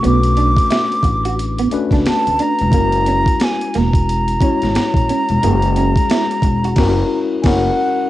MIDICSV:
0, 0, Header, 1, 8, 480
1, 0, Start_track
1, 0, Tempo, 674157
1, 18, Time_signature, 4, 2, 24, 8
1, 5765, End_track
2, 0, Start_track
2, 0, Title_t, "Flute"
2, 0, Program_c, 0, 73
2, 46, Note_on_c, 0, 86, 120
2, 1261, Note_off_c, 0, 86, 0
2, 1480, Note_on_c, 0, 81, 91
2, 1725, Note_on_c, 0, 82, 104
2, 1736, Note_off_c, 0, 81, 0
2, 2446, Note_on_c, 0, 80, 81
2, 2456, Note_off_c, 0, 82, 0
2, 2690, Note_on_c, 0, 82, 88
2, 2700, Note_off_c, 0, 80, 0
2, 5124, Note_off_c, 0, 82, 0
2, 5282, Note_on_c, 0, 80, 54
2, 5320, Note_on_c, 0, 78, 77
2, 5331, Note_off_c, 0, 80, 0
2, 5765, Note_off_c, 0, 78, 0
2, 5765, End_track
3, 0, Start_track
3, 0, Title_t, "Tine electric piano"
3, 0, Program_c, 1, 4
3, 0, Control_c, 1, 64, 127
3, 0, Note_on_c, 1, 57, 69
3, 0, Note_on_c, 1, 61, 62
3, 0, Note_on_c, 1, 62, 59
3, 0, Note_on_c, 1, 66, 63
3, 0, Note_on_c, 1, 68, 76
3, 22, Note_off_c, 1, 57, 0
3, 22, Note_on_c, 1, 57, 67
3, 26, Note_off_c, 1, 61, 0
3, 26, Note_on_c, 1, 61, 62
3, 28, Note_off_c, 1, 62, 0
3, 28, Note_on_c, 1, 62, 62
3, 31, Note_off_c, 1, 66, 0
3, 31, Note_on_c, 1, 66, 61
3, 37, Note_on_c, 1, 71, 75
3, 935, Note_off_c, 1, 57, 0
3, 936, Note_off_c, 1, 61, 0
3, 937, Note_off_c, 1, 62, 0
3, 939, Note_off_c, 1, 66, 0
3, 942, Note_off_c, 1, 71, 0
3, 1221, Note_on_c, 1, 57, 82
3, 1227, Note_on_c, 1, 61, 75
3, 1228, Note_on_c, 1, 62, 75
3, 1234, Note_on_c, 1, 66, 74
3, 1237, Note_on_c, 1, 71, 95
3, 1905, Note_off_c, 1, 57, 0
3, 1908, Note_off_c, 1, 61, 0
3, 1909, Note_off_c, 1, 62, 0
3, 1912, Note_off_c, 1, 66, 0
3, 1913, Note_off_c, 1, 71, 0
3, 1942, Note_on_c, 1, 56, 72
3, 1943, Note_on_c, 1, 61, 62
3, 1948, Control_c, 1, 64, 0
3, 1948, Note_on_c, 1, 64, 64
3, 1950, Note_on_c, 1, 66, 60
3, 1951, Note_off_c, 1, 68, 0
3, 1953, Note_on_c, 1, 70, 77
3, 2066, Control_c, 1, 64, 127
3, 2854, Note_off_c, 1, 56, 0
3, 2855, Note_off_c, 1, 61, 0
3, 2857, Note_off_c, 1, 64, 0
3, 2858, Note_off_c, 1, 66, 0
3, 2860, Note_off_c, 1, 70, 0
3, 3143, Note_on_c, 1, 56, 67
3, 3145, Note_on_c, 1, 61, 61
3, 3150, Note_on_c, 1, 64, 65
3, 3153, Note_on_c, 1, 66, 60
3, 3158, Note_on_c, 1, 73, 76
3, 3826, Note_off_c, 1, 56, 0
3, 3827, Note_off_c, 1, 61, 0
3, 3830, Note_off_c, 1, 64, 0
3, 3831, Note_off_c, 1, 66, 0
3, 3834, Note_off_c, 1, 73, 0
3, 3860, Note_on_c, 1, 56, 79
3, 3862, Note_on_c, 1, 61, 71
3, 3867, Note_on_c, 1, 64, 74
3, 3870, Note_on_c, 1, 66, 68
3, 3874, Note_on_c, 1, 68, 86
3, 4774, Note_off_c, 1, 56, 0
3, 4774, Note_off_c, 1, 61, 0
3, 4777, Note_off_c, 1, 64, 0
3, 4778, Note_off_c, 1, 66, 0
3, 4780, Note_off_c, 1, 68, 0
3, 4825, Note_on_c, 1, 61, 85
3, 4828, Note_on_c, 1, 64, 92
3, 4831, Note_on_c, 1, 66, 94
3, 4834, Note_on_c, 1, 70, 87
3, 4993, Note_off_c, 1, 61, 0
3, 4995, Note_off_c, 1, 64, 0
3, 4997, Note_off_c, 1, 66, 0
3, 4999, Note_off_c, 1, 70, 0
3, 5307, Note_on_c, 1, 61, 94
3, 5308, Note_on_c, 1, 64, 87
3, 5312, Note_on_c, 1, 66, 90
3, 5315, Note_on_c, 1, 70, 85
3, 5474, Note_off_c, 1, 61, 0
3, 5475, Note_off_c, 1, 64, 0
3, 5477, Note_off_c, 1, 66, 0
3, 5479, Note_off_c, 1, 70, 0
3, 5765, End_track
4, 0, Start_track
4, 0, Title_t, "Clean electric guitar"
4, 0, Program_c, 2, 27
4, 22, Note_on_c, 2, 59, 83
4, 114, Note_off_c, 2, 59, 0
4, 266, Note_on_c, 2, 62, 75
4, 356, Note_off_c, 2, 62, 0
4, 502, Note_on_c, 2, 64, 70
4, 594, Note_off_c, 2, 64, 0
4, 892, Note_on_c, 2, 66, 76
4, 951, Note_off_c, 2, 66, 0
4, 1134, Note_on_c, 2, 59, 73
4, 1193, Note_off_c, 2, 59, 0
4, 1371, Note_on_c, 2, 62, 67
4, 1430, Note_off_c, 2, 62, 0
4, 1709, Note_on_c, 2, 62, 70
4, 1799, Note_off_c, 2, 62, 0
4, 1951, Note_on_c, 2, 58, 80
4, 2040, Note_off_c, 2, 58, 0
4, 2192, Note_on_c, 2, 61, 74
4, 2280, Note_off_c, 2, 61, 0
4, 2672, Note_on_c, 2, 58, 84
4, 2760, Note_off_c, 2, 58, 0
4, 3147, Note_on_c, 2, 61, 72
4, 3237, Note_off_c, 2, 61, 0
4, 3633, Note_on_c, 2, 61, 71
4, 3721, Note_off_c, 2, 61, 0
4, 3872, Note_on_c, 2, 58, 84
4, 3960, Note_off_c, 2, 58, 0
4, 4110, Note_on_c, 2, 61, 78
4, 4199, Note_off_c, 2, 61, 0
4, 4348, Note_on_c, 2, 64, 76
4, 4437, Note_off_c, 2, 64, 0
4, 4734, Note_on_c, 2, 66, 74
4, 4792, Note_off_c, 2, 66, 0
4, 5765, End_track
5, 0, Start_track
5, 0, Title_t, "Upright bass"
5, 0, Program_c, 3, 32
5, 34, Note_on_c, 3, 35, 99
5, 381, Note_off_c, 3, 35, 0
5, 742, Note_on_c, 3, 33, 78
5, 1191, Note_off_c, 3, 33, 0
5, 1368, Note_on_c, 3, 37, 79
5, 1453, Note_off_c, 3, 37, 0
5, 1617, Note_on_c, 3, 38, 80
5, 1698, Note_off_c, 3, 38, 0
5, 1860, Note_on_c, 3, 28, 92
5, 1944, Note_off_c, 3, 28, 0
5, 1944, Note_on_c, 3, 30, 107
5, 2296, Note_off_c, 3, 30, 0
5, 2675, Note_on_c, 3, 28, 83
5, 3118, Note_off_c, 3, 28, 0
5, 3294, Note_on_c, 3, 32, 81
5, 3377, Note_off_c, 3, 32, 0
5, 3525, Note_on_c, 3, 34, 82
5, 3612, Note_off_c, 3, 34, 0
5, 3773, Note_on_c, 3, 28, 93
5, 3856, Note_off_c, 3, 28, 0
5, 3869, Note_on_c, 3, 30, 102
5, 4218, Note_off_c, 3, 30, 0
5, 4581, Note_on_c, 3, 28, 81
5, 4800, Note_off_c, 3, 28, 0
5, 4825, Note_on_c, 3, 30, 89
5, 4993, Note_off_c, 3, 30, 0
5, 5305, Note_on_c, 3, 30, 93
5, 5473, Note_off_c, 3, 30, 0
5, 5765, End_track
6, 0, Start_track
6, 0, Title_t, "Muted clean electric guitar strokes"
6, 746, Note_on_c, 9, 29, 43
6, 817, Note_off_c, 9, 29, 0
6, 1230, Note_on_c, 9, 29, 42
6, 1301, Note_off_c, 9, 29, 0
6, 4590, Note_on_c, 9, 29, 42
6, 4661, Note_off_c, 9, 29, 0
6, 5765, End_track
7, 0, Start_track
7, 0, Title_t, "Muted upright bass strokes"
7, 1232, Note_on_c, 9, 29, 43
7, 1303, Note_off_c, 9, 29, 0
7, 1472, Note_on_c, 9, 29, 43
7, 1543, Note_off_c, 9, 29, 0
7, 3389, Note_on_c, 9, 29, 44
7, 3460, Note_off_c, 9, 29, 0
7, 5765, End_track
8, 0, Start_track
8, 0, Title_t, "Drums"
8, 29, Note_on_c, 9, 42, 72
8, 100, Note_off_c, 9, 42, 0
8, 167, Note_on_c, 9, 42, 51
8, 238, Note_off_c, 9, 42, 0
8, 262, Note_on_c, 9, 42, 63
8, 333, Note_off_c, 9, 42, 0
8, 403, Note_on_c, 9, 36, 89
8, 415, Note_on_c, 9, 42, 53
8, 474, Note_off_c, 9, 36, 0
8, 486, Note_off_c, 9, 42, 0
8, 502, Note_on_c, 9, 42, 78
8, 512, Note_on_c, 9, 38, 112
8, 573, Note_off_c, 9, 42, 0
8, 583, Note_off_c, 9, 38, 0
8, 654, Note_on_c, 9, 42, 45
8, 725, Note_off_c, 9, 42, 0
8, 733, Note_on_c, 9, 36, 86
8, 741, Note_on_c, 9, 42, 63
8, 804, Note_off_c, 9, 36, 0
8, 812, Note_off_c, 9, 42, 0
8, 891, Note_on_c, 9, 42, 53
8, 962, Note_off_c, 9, 42, 0
8, 992, Note_on_c, 9, 42, 78
8, 1063, Note_off_c, 9, 42, 0
8, 1128, Note_on_c, 9, 42, 55
8, 1200, Note_off_c, 9, 42, 0
8, 1220, Note_on_c, 9, 42, 62
8, 1292, Note_off_c, 9, 42, 0
8, 1359, Note_on_c, 9, 36, 82
8, 1364, Note_on_c, 9, 42, 39
8, 1376, Note_on_c, 9, 38, 37
8, 1430, Note_off_c, 9, 36, 0
8, 1436, Note_off_c, 9, 42, 0
8, 1447, Note_off_c, 9, 38, 0
8, 1465, Note_on_c, 9, 42, 70
8, 1471, Note_on_c, 9, 38, 104
8, 1536, Note_off_c, 9, 42, 0
8, 1542, Note_off_c, 9, 38, 0
8, 1616, Note_on_c, 9, 42, 45
8, 1688, Note_off_c, 9, 42, 0
8, 1703, Note_on_c, 9, 42, 69
8, 1774, Note_off_c, 9, 42, 0
8, 1842, Note_on_c, 9, 42, 44
8, 1913, Note_off_c, 9, 42, 0
8, 1935, Note_on_c, 9, 36, 101
8, 1942, Note_on_c, 9, 42, 75
8, 2006, Note_off_c, 9, 36, 0
8, 2013, Note_off_c, 9, 42, 0
8, 2082, Note_on_c, 9, 42, 51
8, 2153, Note_off_c, 9, 42, 0
8, 2181, Note_on_c, 9, 42, 67
8, 2252, Note_off_c, 9, 42, 0
8, 2321, Note_on_c, 9, 36, 92
8, 2332, Note_on_c, 9, 42, 50
8, 2392, Note_off_c, 9, 36, 0
8, 2403, Note_off_c, 9, 42, 0
8, 2419, Note_on_c, 9, 42, 76
8, 2429, Note_on_c, 9, 38, 119
8, 2491, Note_off_c, 9, 42, 0
8, 2500, Note_off_c, 9, 38, 0
8, 2572, Note_on_c, 9, 42, 43
8, 2643, Note_off_c, 9, 42, 0
8, 2663, Note_on_c, 9, 42, 62
8, 2673, Note_on_c, 9, 38, 33
8, 2734, Note_off_c, 9, 42, 0
8, 2745, Note_off_c, 9, 38, 0
8, 2801, Note_on_c, 9, 36, 80
8, 2811, Note_on_c, 9, 42, 52
8, 2872, Note_off_c, 9, 36, 0
8, 2883, Note_off_c, 9, 42, 0
8, 2913, Note_on_c, 9, 42, 75
8, 2984, Note_off_c, 9, 42, 0
8, 3047, Note_on_c, 9, 42, 58
8, 3118, Note_off_c, 9, 42, 0
8, 3137, Note_on_c, 9, 36, 90
8, 3143, Note_on_c, 9, 42, 67
8, 3208, Note_off_c, 9, 36, 0
8, 3214, Note_off_c, 9, 42, 0
8, 3288, Note_on_c, 9, 42, 43
8, 3300, Note_on_c, 9, 38, 35
8, 3359, Note_off_c, 9, 42, 0
8, 3371, Note_off_c, 9, 38, 0
8, 3384, Note_on_c, 9, 42, 76
8, 3390, Note_on_c, 9, 38, 100
8, 3455, Note_off_c, 9, 42, 0
8, 3462, Note_off_c, 9, 38, 0
8, 3517, Note_on_c, 9, 36, 85
8, 3535, Note_on_c, 9, 42, 51
8, 3588, Note_off_c, 9, 36, 0
8, 3607, Note_off_c, 9, 42, 0
8, 3627, Note_on_c, 9, 42, 67
8, 3698, Note_off_c, 9, 42, 0
8, 3764, Note_on_c, 9, 42, 44
8, 3835, Note_off_c, 9, 42, 0
8, 3867, Note_on_c, 9, 42, 76
8, 3938, Note_off_c, 9, 42, 0
8, 4003, Note_on_c, 9, 42, 50
8, 4075, Note_off_c, 9, 42, 0
8, 4102, Note_on_c, 9, 42, 63
8, 4173, Note_off_c, 9, 42, 0
8, 4242, Note_on_c, 9, 36, 86
8, 4252, Note_on_c, 9, 42, 51
8, 4313, Note_off_c, 9, 36, 0
8, 4323, Note_off_c, 9, 42, 0
8, 4341, Note_on_c, 9, 42, 77
8, 4351, Note_on_c, 9, 38, 113
8, 4412, Note_off_c, 9, 42, 0
8, 4422, Note_off_c, 9, 38, 0
8, 4492, Note_on_c, 9, 42, 45
8, 4563, Note_off_c, 9, 42, 0
8, 4572, Note_on_c, 9, 36, 90
8, 4578, Note_on_c, 9, 42, 63
8, 4643, Note_off_c, 9, 36, 0
8, 4649, Note_off_c, 9, 42, 0
8, 4730, Note_on_c, 9, 42, 50
8, 4801, Note_off_c, 9, 42, 0
8, 4813, Note_on_c, 9, 49, 79
8, 4816, Note_on_c, 9, 36, 100
8, 4829, Note_on_c, 9, 38, 102
8, 4884, Note_off_c, 9, 49, 0
8, 4888, Note_off_c, 9, 36, 0
8, 4900, Note_off_c, 9, 38, 0
8, 5294, Note_on_c, 9, 49, 78
8, 5297, Note_on_c, 9, 36, 104
8, 5311, Note_on_c, 9, 38, 102
8, 5365, Note_off_c, 9, 49, 0
8, 5368, Note_off_c, 9, 36, 0
8, 5382, Note_off_c, 9, 38, 0
8, 5765, End_track
0, 0, End_of_file